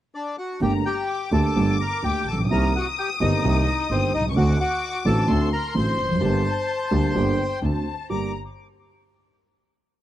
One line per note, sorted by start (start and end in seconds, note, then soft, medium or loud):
0.15 0.36 D4 soft
0.15 0.36 D5 medium
0.38 0.60 F#4 soft
0.38 0.60 F#5 medium
0.61 0.81 G1 medium
0.61 0.81 G2 medium
0.61 0.81 D3 medium
0.61 0.81 A3 soft
0.61 0.81 A#3 soft
0.61 0.82 G4 medium
0.61 0.73 G4 medium
0.61 0.73 G5 medium
0.61 1.06 A#5 medium
0.86 1.30 G4 soft
0.86 1.29 G5 medium
1.09 2.46 D6 medium
1.32 1.52 D2 medium
1.32 1.52 D3 medium
1.32 1.52 A3 soft
1.32 1.52 A#3 soft
1.32 1.52 G4 medium
1.32 1.77 A4 soft
1.32 1.77 A5 medium
1.56 1.76 G1 medium
1.56 1.76 G2 medium
1.56 1.76 D3 medium
1.56 1.76 A3 soft
1.56 1.76 A#3 soft
1.56 1.76 G4 medium
1.81 2.03 A#4 soft
1.81 2.04 A#5 medium
2.03 2.23 D2 soft
2.03 2.23 D3 soft
2.03 2.23 A3 soft
2.03 2.23 A#3 soft
2.03 2.23 G4 soft
2.03 2.26 G4 medium
2.03 2.28 G5 medium
2.27 2.50 A#1 soft
2.27 2.39 A4 medium
2.27 2.38 A5 medium
2.33 2.39 A1 soft
2.39 2.45 A#1 soft
2.44 2.50 B1 medium
2.50 2.70 C2 medium
2.50 2.70 C3 medium
2.50 2.70 D#3 medium
2.50 2.70 A#3 medium
2.50 2.70 C4 medium
2.50 2.70 G4 medium
2.50 2.73 A#4 medium
2.50 2.73 A#5 medium
2.50 4.30 D#6 loud
2.76 2.87 F#4 medium
2.76 2.86 F#5 medium
2.99 3.09 G4 medium
2.99 3.09 G5 medium
3.20 3.40 G1 medium
3.20 3.40 G2 medium
3.20 3.40 D#3 medium
3.20 3.40 A#3 soft
3.20 3.40 C4 soft
3.20 3.87 D#4 medium
3.20 3.41 G4 medium
3.20 3.93 D#5 medium
3.43 3.63 C2 medium
3.43 3.64 C2 medium
3.43 3.63 C3 medium
3.43 3.63 D#3 medium
3.43 3.63 A#3 medium
3.43 3.63 C4 medium
3.43 3.64 G4 medium
3.90 4.10 G1 medium
3.90 4.10 G1 soft
3.90 4.10 G2 soft
3.90 4.10 D#3 soft
3.90 4.10 A#3 soft
3.90 4.10 C4 soft
3.90 4.13 C4 medium
3.90 4.10 G4 soft
3.90 4.12 C5 medium
4.14 4.36 C2 soft
4.14 4.25 D#4 medium
4.14 4.24 D#5 medium
4.20 4.25 B1 soft
4.25 4.31 C2 soft
4.30 4.37 C#2 medium
4.30 4.37 C#6 medium
4.36 4.56 D2 medium
4.36 4.56 D3 medium
4.36 4.56 A3 medium
4.36 4.56 C4 medium
4.36 4.56 F#4 medium
4.36 4.59 F#4 medium
4.36 4.58 F#5 medium
4.36 5.29 D6 medium
4.60 5.03 F#4 medium
4.60 5.03 F#5 medium
5.05 5.25 A1 medium
5.05 5.25 A2 medium
5.05 5.25 D3 medium
5.05 5.25 A3 soft
5.05 5.25 C4 soft
5.05 5.25 F#4 medium
5.05 5.49 A4 medium
5.05 5.49 A5 medium
5.28 5.48 D2 medium
5.28 5.49 D2 medium
5.28 5.48 D3 medium
5.28 5.48 A3 medium
5.28 5.48 C4 medium
5.28 5.48 F#4 medium
5.28 6.21 C6 medium
5.53 5.74 A#4 medium
5.53 5.74 A#5 medium
5.75 5.94 A1 soft
5.75 5.95 A1 soft
5.75 5.95 A2 soft
5.75 5.94 D3 soft
5.75 5.95 A3 soft
5.75 5.95 C4 soft
5.75 5.95 F#4 soft
5.75 7.59 C5 medium
5.75 7.59 C6 medium
5.99 6.22 F1 soft
6.04 6.10 E2 soft
6.10 6.16 F2 soft
6.15 6.21 F#2 medium
6.21 6.41 G1 medium
6.21 6.41 G2 medium
6.21 6.41 D3 medium
6.21 6.41 G3 medium
6.21 6.41 A#3 medium
6.21 6.41 G4 medium
6.21 7.15 A5 medium
6.91 7.11 D2 medium
6.91 7.12 D2 medium
6.91 7.11 D3 medium
6.91 7.11 G3 soft
6.91 7.11 A#3 soft
6.91 7.11 G4 medium
7.14 7.35 G1 medium
7.14 7.35 G2 medium
7.14 7.35 D3 medium
7.14 7.35 G3 soft
7.14 7.35 A#3 soft
7.14 7.35 G4 medium
7.14 7.63 G5 medium
7.62 7.82 D2 soft
7.62 7.82 D3 soft
7.62 7.82 A3 soft
7.62 7.83 C4 soft
7.62 7.83 F#4 soft
7.62 8.10 A5 medium
8.10 8.30 G1 soft
8.10 8.30 G2 soft
8.10 8.29 A#3 soft
8.10 8.30 D4 soft
8.10 8.29 G4 soft
8.10 8.32 A#5 medium
8.10 8.32 D6 medium